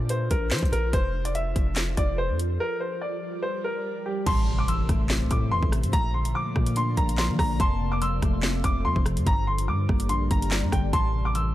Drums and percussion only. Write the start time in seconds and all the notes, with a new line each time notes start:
0.09 closed hi-hat
0.31 kick, closed hi-hat
0.51 snare, clap, closed hi-hat
0.58 closed hi-hat
0.63 kick, closed hi-hat
0.73 closed hi-hat
0.93 kick, closed hi-hat
1.25 closed hi-hat
1.35 closed hi-hat
1.56 kick, closed hi-hat
1.76 snare, clap, closed hi-hat
1.97 kick, closed hi-hat
2.40 closed hi-hat
4.27 kick, closed hi-hat, crash
4.68 closed hi-hat
4.89 kick, cross-stick, closed hi-hat
5.09 snare, clap
5.31 kick, closed hi-hat
5.63 kick
5.72 cross-stick, closed hi-hat
5.84 closed hi-hat
5.93 kick, closed hi-hat
6.25 closed hi-hat
6.56 kick, cross-stick
6.67 closed hi-hat
6.76 closed hi-hat
6.97 kick, closed hi-hat
7.09 closed hi-hat
7.18 snare, clap
7.39 kick, cross-stick, open hi-hat
7.60 kick, closed hi-hat
8.02 closed hi-hat
8.22 kick, cross-stick, closed hi-hat
8.43 snare, clap
8.64 kick, closed hi-hat
8.96 kick
9.06 cross-stick, closed hi-hat
9.17 closed hi-hat
9.27 kick, closed hi-hat
9.58 closed hi-hat
9.89 kick, cross-stick
10.00 closed hi-hat
10.09 closed hi-hat
10.31 kick, closed hi-hat
10.42 closed hi-hat
10.51 snare, clap
10.72 kick, cross-stick, closed hi-hat
10.93 kick, closed hi-hat
11.35 closed hi-hat